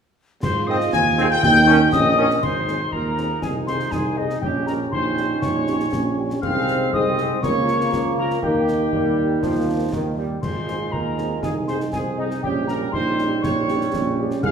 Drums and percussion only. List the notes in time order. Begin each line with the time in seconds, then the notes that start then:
0.43 concert bass drum, snare, crash
0.81 snare
0.93 concert bass drum, snare
1.18 snare
1.43 concert bass drum, snare
1.55 snare
1.68 snare
1.93 concert bass drum, snare
2.30 snare
2.43 concert bass drum, crash
2.68 snare
2.93 concert bass drum
3.18 snare
3.42 concert bass drum, snare
3.68 snare
3.80 snare
3.92 concert bass drum, snare
4.30 snare
4.43 concert bass drum
4.67 snare
4.92 concert bass drum
5.17 snare
5.42 concert bass drum, snare
5.67 snare
5.80 snare
5.93 concert bass drum, snare
6.30 snare
6.43 concert bass drum, crash
6.68 snare
6.93 concert bass drum
7.18 snare
7.43 concert bass drum, snare
7.68 snare
7.81 snare
7.93 concert bass drum, snare
8.30 snare
8.43 concert bass drum
8.68 snare
8.93 concert bass drum
9.43 concert bass drum, snare
9.93 concert bass drum, snare
10.43 concert bass drum, crash
10.68 snare
10.93 concert bass drum
11.18 snare
11.43 concert bass drum, snare
11.68 snare
11.80 snare
11.93 concert bass drum, snare
12.31 snare
12.43 concert bass drum
12.68 snare
12.93 concert bass drum
13.19 snare
13.44 concert bass drum, snare
13.69 snare
13.81 snare
13.93 concert bass drum, snare
14.31 snare
14.43 concert bass drum, crash